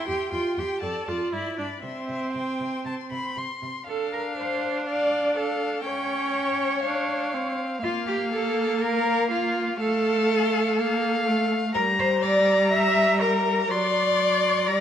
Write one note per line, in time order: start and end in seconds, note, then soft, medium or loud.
0.06 0.16 E2 soft
0.06 0.32 G4 medium
0.06 0.31 G5 soft
0.06 0.31 C6 soft
0.32 0.40 E2 soft
0.32 0.60 F4 medium
0.32 0.56 G5 soft
0.32 0.56 C6 soft
0.57 0.66 E2 soft
0.57 0.83 G4 medium
0.57 0.82 G5 soft
0.57 0.80 C6 soft
0.80 0.90 F2 soft
0.80 1.09 A4 medium
0.80 1.07 D5 soft
0.80 1.06 A5 soft
1.07 1.16 F2 soft
1.07 1.34 F4 medium
1.07 1.32 D5 soft
1.07 1.32 A5 soft
1.32 1.40 G2 soft
1.32 1.57 E4 soft
1.32 1.56 D5 soft
1.32 1.57 B5 soft
1.56 1.66 G2 soft
1.56 1.66 D4 soft
1.56 1.82 D5 soft
1.56 1.83 B5 soft
1.82 1.91 C3 soft
1.82 3.33 C4 medium
1.82 2.06 E5 soft
1.82 2.09 C6 soft
2.07 2.16 C3 soft
2.07 2.33 E5 soft
2.12 2.35 C6 soft
2.33 2.43 C3 soft
2.33 2.81 G5 soft
2.37 2.61 C6 soft
2.60 2.68 C3 soft
2.60 2.86 C6 soft
2.85 2.93 C3 soft
2.85 2.94 A5 soft
2.85 3.12 C6 soft
3.11 3.19 C3 soft
3.11 3.39 B5 soft
3.11 3.37 C6 soft
3.36 3.44 C3 soft
3.36 3.87 C6 soft
3.36 3.62 C6 soft
3.62 3.70 C3 soft
3.62 3.87 C6 soft
3.88 5.82 D4 medium
3.88 4.10 A4 medium
3.88 4.15 A4 medium
3.88 4.83 F5 soft
4.13 4.21 A#4 medium
4.13 4.36 A#4 medium
4.37 4.85 C5 medium
4.37 4.86 C5 medium
4.86 5.35 D5 medium
4.86 5.37 D5 medium
4.86 5.35 F5 medium
5.35 5.87 A4 medium
5.35 5.84 A4 medium
5.35 5.83 F5 medium
5.84 6.82 C#4 medium
5.84 7.58 C#5 medium
5.84 7.55 C#5 medium
5.84 6.81 G5 medium
6.84 7.35 D4 medium
6.84 7.80 F5 medium
7.34 7.82 C4 medium
7.82 9.75 A#3 medium
7.82 8.05 F4 medium
7.82 7.91 F4 medium
7.82 8.79 F5 medium
8.07 8.15 G4 medium
8.07 8.31 G4 medium
8.30 8.83 A4 medium
8.30 8.82 A4 medium
8.81 9.30 A#4 medium
8.81 9.29 F5 medium
9.31 9.78 F4 medium
9.31 9.79 F5 medium
9.80 10.80 A3 medium
9.80 11.47 A4 medium
9.80 10.76 F5 medium
10.78 11.29 A#3 medium
10.78 11.73 F5 medium
11.27 11.75 A3 medium
11.74 13.67 G3 medium
11.74 11.82 A#4 medium
11.74 11.83 A#4 medium
11.74 12.23 A#5 medium
11.99 12.07 C5 medium
11.99 12.24 C5 medium
12.22 12.71 D5 medium
12.22 12.72 D5 medium
12.22 13.19 A#5 medium
12.71 13.20 E5 loud
12.71 13.23 E5 loud
13.20 13.70 A#4 medium
13.20 13.72 A#4 medium
13.20 13.72 A#5 medium
13.69 14.69 F#3 medium
13.69 14.80 D5 loud
13.69 14.80 D5 medium
13.69 14.69 C6 medium
14.67 14.80 G3 medium
14.67 14.80 A#5 medium